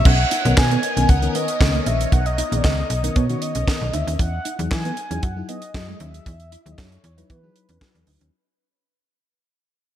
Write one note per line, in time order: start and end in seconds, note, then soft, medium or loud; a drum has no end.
0.05 0.25 B1 loud
0.05 4.15 B3 medium
0.05 0.15 C#4 medium
0.05 4.15 A#4 medium
0.05 4.15 C#5 medium
0.05 4.15 D#5 medium
0.05 0.57 F#5 loud
0.05 kick loud
0.05 crash medium
0.31 0.40 D#4 medium
0.31 closed hi-hat medium
0.45 0.54 B1 loud
0.45 0.77 D#3 medium
0.45 0.77 B3 medium
0.45 0.77 C#4 medium
0.45 0.77 A#4 medium
0.45 muted clean electric guitar stroke soft
0.45 closed hi-hat soft
0.57 0.77 B2 medium
0.57 1.11 G#5 loud
0.57 kick loud
0.57 snare loud
0.57 clap medium
0.71 0.79 B3 medium
0.71 closed hi-hat soft
0.83 muted clean electric guitar stroke soft
0.83 closed hi-hat medium
0.96 1.06 B1 medium
0.96 1.12 D#3 medium
0.96 1.12 B3 medium
0.96 1.05 C#4 medium
0.96 1.12 C#4 medium
0.96 1.12 A#4 medium
0.96 closed hi-hat medium
1.09 1.29 C#2 medium
1.09 1.36 F#5 loud
1.09 kick loud
1.09 closed hi-hat medium
1.22 1.46 D#3 medium
1.22 1.46 B3 medium
1.22 1.46 C#4 medium
1.22 1.47 A#4 medium
1.22 closed hi-hat soft
1.35 1.44 B3 medium
1.35 1.88 D#5 loud
1.35 closed hi-hat medium
1.48 closed hi-hat medium
1.60 1.80 C#2 loud
1.60 2.17 D#3 medium
1.60 2.17 B3 medium
1.60 2.17 C#4 medium
1.60 2.17 A#4 medium
1.60 muted clean electric guitar stroke soft
1.60 kick loud
1.60 snare loud
1.60 clap medium
1.74 1.82 A#3 medium
1.86 2.06 A#1 medium
1.86 1.96 C#4 medium
1.86 2.12 E5 loud
1.86 closed hi-hat medium
2.01 closed hi-hat medium
2.12 2.43 B1 loud
2.12 2.21 D#4 medium
2.12 2.28 F#5 loud
2.12 kick medium
2.12 closed hi-hat medium
2.26 2.57 D#5 loud
2.26 closed hi-hat soft
2.38 2.47 D#4 medium
2.38 closed hi-hat medium
2.52 2.61 A#1 medium
2.52 2.83 D#3 medium
2.52 2.83 B3 medium
2.52 2.84 C#4 medium
2.52 2.84 G#4 medium
2.52 muted clean electric guitar stroke soft
2.52 closed hi-hat medium
2.57 2.66 D5 medium
2.64 2.84 C#2 loud
2.64 2.73 C#4 medium
2.64 3.17 D#5 loud
2.64 kick loud
2.64 snare loud
2.64 clap medium
2.90 3.10 B1 loud
2.90 muted clean electric guitar stroke soft
2.90 closed hi-hat medium
3.03 3.19 D#3 medium
3.03 3.19 B3 medium
3.03 3.19 C#4 medium
3.03 3.12 D#4 medium
3.03 3.19 A#4 medium
3.03 closed hi-hat medium
3.16 3.36 B2 medium
3.16 3.25 B3 medium
3.16 3.43 C#5 loud
3.16 kick loud
3.16 closed hi-hat medium
3.29 3.53 D#3 medium
3.29 3.53 B3 medium
3.29 3.53 C#4 medium
3.29 3.54 F#4 loud
3.29 muted clean electric guitar stroke soft
3.29 closed hi-hat soft
3.42 3.95 D#5 loud
3.42 closed hi-hat medium
3.55 3.65 B1 medium
3.55 3.64 C#4 medium
3.55 closed hi-hat medium
3.67 4.19 D#3 medium
3.67 4.19 B3 medium
3.67 4.19 C#4 medium
3.67 4.19 A#4 medium
3.67 muted clean electric guitar stroke soft
3.67 kick loud
3.67 snare loud
3.67 clap medium
3.81 3.91 B1 loud
3.93 4.04 D2 medium
3.93 4.03 D#4 medium
3.93 4.19 E5 loud
3.93 closed hi-hat medium
4.07 4.16 D#2 medium
4.07 4.15 C#4 medium
4.07 closed hi-hat soft
4.19 4.39 E2 medium
4.19 4.28 C#4 medium
4.19 4.67 F#5 loud
4.19 kick loud
4.19 closed hi-hat medium
4.45 4.54 D#4 medium
4.45 closed hi-hat medium
4.59 4.68 E2 loud
4.59 4.90 F#3 medium
4.59 4.90 D#4 medium
4.59 4.91 E4 medium
4.59 4.91 G#4 medium
4.59 muted clean electric guitar stroke soft
4.59 closed hi-hat medium
4.71 4.91 E3 loud
4.71 5.25 G#5 loud
4.71 kick loud
4.71 snare loud
4.71 clap medium
4.85 4.93 B3 medium
4.85 closed hi-hat soft
4.97 muted clean electric guitar stroke soft
4.97 closed hi-hat medium
5.10 5.20 E2 medium
5.10 5.26 F#3 medium
5.10 5.19 C#4 medium
5.10 5.26 D#4 medium
5.10 5.26 E4 medium
5.10 5.26 G#4 medium
5.10 closed hi-hat medium
5.23 5.43 F#2 loud
5.23 5.48 F#5 loud
5.23 kick loud
5.23 closed hi-hat medium
5.36 5.60 F#3 medium
5.36 5.60 D#4 medium
5.36 5.60 E4 medium
5.36 5.61 G#4 medium
5.49 5.58 B3 medium
5.49 6.02 D#5 loud
5.49 closed hi-hat medium
5.62 closed hi-hat medium
5.74 5.94 F#2 loud
5.74 6.30 F#3 medium
5.74 6.31 E4 medium
5.74 6.31 F#4 medium
5.74 6.31 G#4 medium
5.74 kick loud
5.74 snare loud
5.74 clap medium
5.88 5.96 G#3 medium
6.00 6.20 D#2 loud
6.00 6.09 C#4 medium
6.00 6.73 E5 loud
6.00 closed hi-hat medium
6.14 closed hi-hat medium
6.26 6.56 E2 loud
6.26 6.35 D#4 medium
6.26 kick medium
6.26 closed hi-hat medium
6.40 closed hi-hat soft
6.52 6.61 E4 medium
6.52 closed hi-hat medium
6.65 6.75 D#2 loud
6.65 6.97 F#3 medium
6.65 6.97 D#4 medium
6.65 6.97 E4 medium
6.65 6.98 G#4 medium
6.65 muted clean electric guitar stroke soft
6.65 closed hi-hat soft
6.72 6.80 D#5 medium
6.78 6.98 F#2 loud
6.78 6.87 C#4 medium
6.78 7.30 C#5 loud
6.78 kick loud
6.78 snare loud
6.78 clap medium
6.92 closed hi-hat soft
7.04 7.24 E2 loud
7.04 muted clean electric guitar stroke soft
7.04 closed hi-hat medium
7.17 7.33 F#3 medium
7.17 7.33 D#4 medium
7.17 7.26 D#4 medium
7.17 7.33 E4 medium
7.17 7.33 B4 loud
7.17 closed hi-hat medium
7.30 7.50 E3 medium
7.30 7.39 B3 medium
7.30 8.03 B4 medium
7.30 kick medium
7.30 closed hi-hat medium
7.43 7.67 F#3 medium
7.43 7.67 D#4 medium
7.43 7.67 E4 medium
7.43 7.67 G#4 medium
7.43 muted clean electric guitar stroke soft
7.56 closed hi-hat medium
7.69 7.78 E2 medium
7.69 7.77 C#4 medium
7.69 closed hi-hat medium
7.81 8.33 F#3 medium
7.81 8.33 D#4 medium
7.81 8.33 E4 medium
7.81 8.33 F#4 medium
7.81 muted clean electric guitar stroke soft
7.81 kick loud
7.81 snare loud
7.81 clap medium
7.95 8.04 E2 medium
7.95 closed hi-hat soft
8.07 8.18 D2 medium
8.07 8.16 D#4 medium
8.07 open hi-hat medium
8.21 8.30 D#2 medium
8.21 8.29 C#4 medium
8.21 closed hi-hat medium